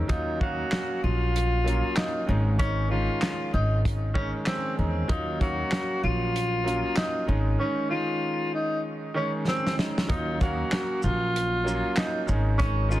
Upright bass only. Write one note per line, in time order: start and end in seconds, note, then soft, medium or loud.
0.10 0.62 D#2 loud
1.04 1.81 A#1 medium
2.29 3.07 G#1 loud
3.54 4.31 G#1 medium
4.79 5.05 E2 medium
5.10 5.62 D#2 loud
6.03 6.81 A#1 medium
7.29 7.55 G#1 loud
10.10 10.62 D#2 loud
11.04 11.81 A#1 medium
12.29 13.00 G#1 loud